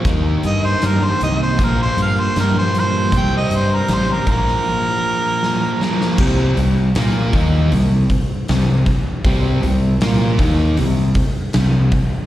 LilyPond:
<<
  \new Staff \with { instrumentName = "Harmonica" } { \time 4/4 \key bes \lydian \tempo 4 = 78 r8 ees''16 c''16 bes'16 c''16 ees''16 c''16 bes'16 c''16 f''16 c''16 bes'16 c''16 c''8 | g''16 ees''16 c''16 bes'16 c''16 bes'16 bes'2~ bes'8 | r1 | r1 | }
  \new Staff \with { instrumentName = "Distorted electric guitar" } { \clef bass \time 4/4 \key bes \lydian <ees bes ees'>2 <bes, f bes>2 | <c g c'>4. <bes, f bes>2 <bes, f bes>8 | <c g c'>8 <c g>8 <bes f' bes'>8 <ees bes ees'>8 <c g>8 r8 <c g>8 r8 | <c g c'>8 <c g>8 <bes f' bes'>8 <ees bes ees'>8 <c g>8 r8 <c g>8 r8 | }
  \new Staff \with { instrumentName = "Fingered electric bass" } { \clef bass \time 4/4 \key bes \lydian ees,8 g,8 g,8 c,8 bes,,8 g,8 g,4 | c,8 g,8 a,,8 bes,,8 r2 | c,8 c,8 bes,8 ees,8 c,8 r8 c,8 r8 | c,8 c,8 bes,8 ees,8 c,8 r8 c,8 r8 | }
  \new DrumStaff \with { instrumentName = "Drums" } \drummode { \time 4/4 <hh bd>8 hh8 <hh sn>8 hh8 <hh bd>8 hh8 <hh sn>8 hh8 | <hh bd>8 hh8 <hh sn>8 <hh bd>16 sn16 r4 sn8 sn16 sn16 | <cymc bd>8 hho8 <hho sn>8 <hho bd>8 hho8 <hho bd>8 <hho sn>8 <hho bd>8 | <hho bd>8 hho8 <hho sn>8 <hho bd>8 hho8 <hho bd>8 <hho sn>8 <hho bd>8 | }
>>